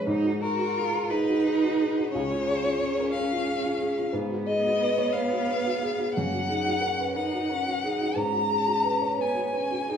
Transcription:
0.07 G#2 D#4
0.24 F#4
0.41 F#4 G#4 A#4
0.59 F#4
0.78 F4 G#4
0.94 A#4
1.10 D#4 G#4 B4
1.28 F#4
1.45 G#4
1.63 F#4
1.80 G#4
1.98 F#4
2.09 C#4 C#5
2.15 C#2
2.31 F4
2.48 G#4
2.64 F4
2.81 G#4
3.00 A#4
3.12 G#4 F5
3.32 F4
3.48 G#4
3.64 F4
3.80 G#4
3.97 F4
4.13 G#2 B3
4.30 F#4
4.47 G#4 D#5
4.66 F#4
4.81 B4
4.98 C#5
5.13 B4 F5
5.32 F#4
5.49 B4
5.66 F#4
5.83 G#4
5.98 F#4
6.14 F#2 A#3 F#5
6.33 F#4
6.48 D#4 G#4
6.66 F#4
6.81 C#4 A#4
7.00 B4
7.16 D#4 A#4 F#5
7.33 F#4
7.49 C#4 A#4
7.66 F#4
7.84 D#4 G#4
8.00 F#4
8.16 G#2 C#4 A#5
8.32 F#4
8.50 G#4
8.66 F#4
8.84 B4
9.01 C#5
9.18 B3 B4 G#5
9.35 F#4
9.53 C#4 B4
9.71 F#4
9.88 D#4 G#4

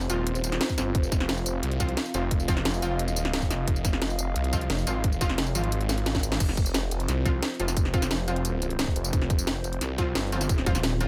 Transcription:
Already playing: C4 F4 C5
0.01 tambourine
0.10 D#1 F3 C4 F4, closed hi-hat, tambourine
0.27 closed hi-hat
0.35 closed hi-hat, tambourine
0.44 closed hi-hat, tambourine
0.52 snare, closed hi-hat
0.61 snare, closed hi-hat
0.69 kick, tambourine
0.78 G1, snare, closed hi-hat, tambourine
0.95 F1 F5, kick, closed hi-hat
1.02 D#5, tambourine
1.12 kick, snare, closed hi-hat, tambourine
1.20 snare
1.29 snare, closed hi-hat
1.37 tambourine
1.46 F1, closed hi-hat, tambourine
1.63 C2, closed hi-hat
1.72 closed hi-hat
1.80 F3 C4 F4, kick, closed hi-hat, tambourine
1.89 closed hi-hat
1.97 snare, closed hi-hat
2.06 tambourine
2.14 F1 F3 C4 F4, closed hi-hat, tambourine
2.31 kick, closed hi-hat
2.40 tambourine
2.48 F3 C4 F4, kick, snare, closed hi-hat, tambourine
2.57 snare
2.65 snare, closed hi-hat
2.74 tambourine
2.82 F3 C4 F4, closed hi-hat, tambourine
2.99 closed hi-hat
3.08 closed hi-hat, tambourine
3.16 closed hi-hat, tambourine
3.25 snare, closed hi-hat
3.33 C#1, snare, closed hi-hat
3.42 kick, tambourine
3.50 F1, snare, closed hi-hat, tambourine
3.68 F1, kick, closed hi-hat
3.76 tambourine
3.85 kick, snare, closed hi-hat, tambourine
3.93 snare
4.02 snare, closed hi-hat
4.10 tambourine
4.19 F1, closed hi-hat, tambourine
4.36 C2, closed hi-hat
4.44 closed hi-hat
4.53 F3 C4 F4, kick, closed hi-hat, tambourine
4.61 closed hi-hat
4.70 F1, snare, closed hi-hat
4.78 tambourine
4.87 G#1 F3 C4 F4, closed hi-hat, tambourine
5.04 kick, closed hi-hat
5.12 tambourine
5.21 F1 F3 C4 F4, kick, snare, closed hi-hat, tambourine
5.29 snare
5.38 snare, closed hi-hat
5.47 tambourine
5.55 G#1 F3 C4 F4, closed hi-hat, tambourine
5.64 closed hi-hat
5.72 closed hi-hat
5.81 closed hi-hat
5.89 snare, closed hi-hat, tambourine
5.98 closed hi-hat
6.06 snare, closed hi-hat
6.15 kick, snare, tambourine
6.23 closed hi-hat, tambourine
6.32 snare, closed hi-hat
6.40 F1 C4 F4 C5, kick, closed hi-hat, crash, tambourine
6.49 snare
6.57 kick, closed hi-hat, tambourine
6.66 tambourine
6.74 snare, closed hi-hat, tambourine
6.91 F1, closed hi-hat, tambourine
7.00 closed hi-hat
7.08 C2, snare, closed hi-hat, tambourine
7.25 F3 C4 F4, kick, closed hi-hat, tambourine
7.43 snare, closed hi-hat, tambourine
7.60 F1 F3 C4 F4, closed hi-hat, tambourine
7.68 snare, closed hi-hat, tambourine
7.77 kick, closed hi-hat, tambourine
7.85 snare
7.94 F3 C4 F4, kick, closed hi-hat, tambourine
8.02 snare, tambourine
8.11 snare, closed hi-hat, tambourine
8.28 F3 C4 F4, closed hi-hat, tambourine
8.36 closed hi-hat
8.45 closed hi-hat, tambourine
8.62 closed hi-hat, tambourine
8.70 closed hi-hat
8.79 snare, closed hi-hat, tambourine
8.87 kick
8.96 F1, closed hi-hat, tambourine
9.04 closed hi-hat, tambourine
9.13 F1, kick, closed hi-hat, tambourine
9.22 snare
9.30 kick, closed hi-hat, tambourine
9.39 tambourine
9.47 snare, closed hi-hat, tambourine
9.64 F1, closed hi-hat, tambourine
9.73 closed hi-hat
9.81 C2, snare, closed hi-hat, tambourine
9.98 F3 C4 F4, kick, closed hi-hat, tambourine
10.15 G1, snare, closed hi-hat, tambourine
10.32 F3 C4 F4, closed hi-hat, tambourine
10.41 snare, closed hi-hat, tambourine
10.49 kick, closed hi-hat, tambourine
10.58 snare
10.66 D#1 F3 C4 F4, kick, closed hi-hat, tambourine
10.75 snare, tambourine
10.83 snare, closed hi-hat, tambourine
11.01 F3 C4 F4, closed hi-hat, tambourine

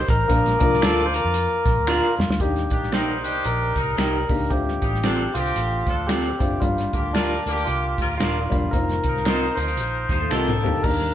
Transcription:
0.09 A1 A#4, kick, closed hi-hat
0.28 A#1 F3 A#3 D4 F4 A#4 D5, kick, closed hi-hat
0.46 snare, closed hi-hat
0.59 C2 F3 A#3 D4 F4 A#4, kick, closed hi-hat
0.74 snare
0.81 D2 D4 F4 A4 A#4 D5, finger snap, snare, closed hi-hat
1.06 C5
1.14 A#4, closed hi-hat
1.24 F2
1.34 closed hi-hat
1.66 A#1, kick, snare, closed hi-hat
1.78 D2
1.87 D4 F4 A#4 D5, finger snap
2.19 F2, snare
2.29 D2, snare
2.40 D#2 A#3 D4 D#4 G4, kick, closed hi-hat
2.56 snare, closed hi-hat
2.70 A#1 D#3 D4 G4, kick, closed hi-hat
2.83 snare
2.92 G3 A#3 D#4 G4 A#4 C5 D5, finger snap, snare, closed hi-hat
3.23 C2 D#3 D4 G4, closed hi-hat
3.44 A#1 A#4, closed hi-hat
3.76 C2 G3 D#4 A#4, kick, snare, closed hi-hat
3.97 C2 A#3 D#4 G4 A#4 D5, finger snap, snare, closed hi-hat
4.29 C#2 A#3 D4 D#4 G4, kick, open hi-hat
4.50 D2 A3 C4 D4 F4 G4, kick, closed hi-hat
4.68 snare
4.81 A1 G3 D#4 G4, kick, closed hi-hat
4.94 snare
5.03 F3 C4 D4 F4 A4 D5, finger snap, snare, closed hi-hat
5.34 C2 D3 C4 F4 G4, closed hi-hat
5.46 closed hi-hat
5.56 A1, closed hi-hat
5.87 D2 F3 D4 A4, kick, snare, closed hi-hat
6.07 C4 F4 G4 A4 D5, finger snap, snare, closed hi-hat
6.39 F#1 A3 C4 D4 F4, kick, closed hi-hat
6.60 G1 G3 A#3 D4 F4, kick, closed hi-hat
6.78 snare, closed hi-hat
6.93 D2 D3 A#3 G4, kick, closed hi-hat
7.13 G3 D4 F4 A#4 D5, finger snap, snare, closed hi-hat
7.46 D2 D3 A#3 G4, closed hi-hat
7.57 closed hi-hat
7.65 C2 F4, closed hi-hat
7.98 D2 G3 F4 A#4, kick, snare, closed hi-hat
8.18 D#1 D4 F4 A#4 D5, finger snap, snare, closed hi-hat
8.50 E1 G3 A#3 D4 F4, kick, closed hi-hat
8.71 F1 A#3 C4 D#4 F4 A#4, kick, closed hi-hat
8.89 snare, closed hi-hat
9.04 C2 F3 D#4 A#4, kick, closed hi-hat
9.16 snare
9.25 F3 C4 D#4 F4 A#4 C5 D#5, finger snap, snare, closed hi-hat
9.55 D2 F3 D#4 A#4 C5, closed hi-hat
9.68 closed hi-hat
9.77 A#1, closed hi-hat
10.09 D#2 F3 G3 D#4 C5, kick, snare, closed hi-hat
10.20 A3 F4
10.30 C2 A#3 C4 F4 G4 A4 A#4 D#5, finger snap, snare
10.47 D4 A#4, mid tom
10.63 D2 A#3 C4 D#4 G4, floor tom
10.83 D#2 A#3 D4 D#4 G4 A#4, kick, crash
11.00 snare, closed hi-hat

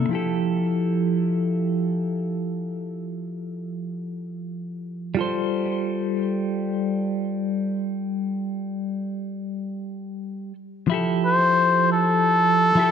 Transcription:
0.09 F3 E4
0.13 G4 A4
5.15 G3 F4
5.19 A4 C5
10.88 F3 E4 G4
10.94 A4
11.26 C5
11.93 A4
12.75 F3 E4
12.79 G4 A4

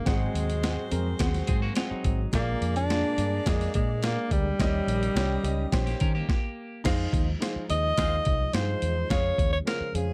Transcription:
0.06 G#1 G#2 F#3 G#3 C4 F#4 G#4 C5 F#5, kick, snare, closed hi-hat
0.34 D#2, closed hi-hat
0.50 closed hi-hat
0.63 C4 G#4 F#5, snare, closed hi-hat
0.91 F2 C4 G#4 A#4, closed hi-hat
1.19 D#2 B3 G#4 F#5, kick, snare, closed hi-hat
1.26 C4
1.34 snare, closed hi-hat
1.47 G#2 C4 G#4, kick, closed hi-hat
1.62 A#3 F#4
1.75 G#3 C4 F4 G#4 F#5, snare, closed hi-hat
1.90 F#3 D#4, muted fingered electric bass stroke
2.04 G#1, kick, closed hi-hat
2.32 A#1 A#2 A#3 D4 G#4 D5, kick, snare, closed hi-hat
2.61 F2, closed hi-hat
2.76 D4, closed hi-hat
2.90 A#3 G#4 F5, snare, closed hi-hat
3.18 G2 A#3 G#4 D5, closed hi-hat
3.46 F2 G#3 A#3 G#4 D5, kick, snare, closed hi-hat
3.61 snare, closed hi-hat
3.74 A#2 G#3, kick, closed hi-hat
4.03 A#3 G#4 D5, snare, closed hi-hat
4.31 D2 G3, kick, closed hi-hat
4.59 D#2 D#3 G3 A#3 C#4 D#4 G4 D#5, kick, snare, closed hi-hat
4.87 A#1, closed hi-hat
5.03 closed hi-hat
5.15 C2 C#4 G4 C#5, snare, closed hi-hat
5.43 C#2 C#4 G4 D#5, closed hi-hat
5.72 A#1 C#4 G4 C5, kick, snare, closed hi-hat
5.86 A#3 G4, snare, closed hi-hat
6.00 D#3 C#4 A#4, kick, closed hi-hat
6.15 A#3 G4
6.29 kick, snare
6.84 F2 F3 G#3 D#4 G#4 C5 F5, kick, snare, closed hi-hat, crash
7.13 D#2, kick, closed hi-hat
7.41 D#4 G#4 C5 F5, snare, closed hi-hat
7.56 muted fingered electric bass stroke
7.69 D#2 D#4 G#4 C5 D#5, closed hi-hat
7.97 D#2 G#3 D#4 F4 G#4 C5 F5, kick, snare, closed hi-hat
8.25 C2, kick, closed hi-hat
8.53 G2 D#4 G4 C5 F5, snare, closed hi-hat
8.60 G#4
8.82 E2, closed hi-hat
9.10 F2 C#3 F3 G#3 C#4 G#4 C#5 F5, kick, snare, closed hi-hat
9.38 D#2, kick, closed hi-hat
9.52 C#5
9.65 C#4 G#4 A#4 C5 F5, snare, closed hi-hat
9.81 muted fingered electric bass stroke
9.95 F2 C#4 G#4 C5 F5, closed hi-hat

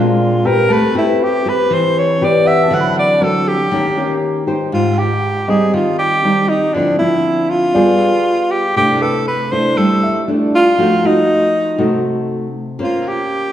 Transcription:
Already playing: A#2 G#3 C4 D4 F4 F5
0.45 C4 G4 A#4 B4
0.69 A3 B4 A5
0.94 C4 E4 G4 B4
1.24 G4
1.46 C4 G4 B4
1.70 E3 C5
1.99 C#5
2.21 C4 G4 B4 D5
2.45 E5 F#5
2.63 A5
2.70 D3 F#3 C4 E4 F#5
2.80 B5
2.99 D5
3.21 F#3 C4 E4 A4
3.48 G4
3.71 D#3 A#3 C#4 G4
3.97 A#3 C#4 G4
4.47 D#4 G4 C5
4.72 G#2 F4
4.98 G4 G5
5.48 G3 C4 D#4 G#4 D#5
5.74 D#3 F4
5.99 G4
6.24 G3 C4 D#4
6.49 D#4
6.74 D3 F3 C4 D4 E4
6.99 F3 C4 E4
7.50 F4
7.74 G3 B3 F4 G#4 D5
8.51 G4
8.76 C3 A3 D4 E4 G4
9.02 A4 B4
9.28 B4
9.52 A3 D4 E4 C5
9.77 G3 A4
10.03 E5
10.28 A3 D4 E4
10.55 F4
10.78 F3 A3 D#4 F#4
11.03 A3 D#4 F#4
11.78 C3 A3 D#4 F#4
12.79 A#3 C#4 C5
12.84 F4
13.08 G4

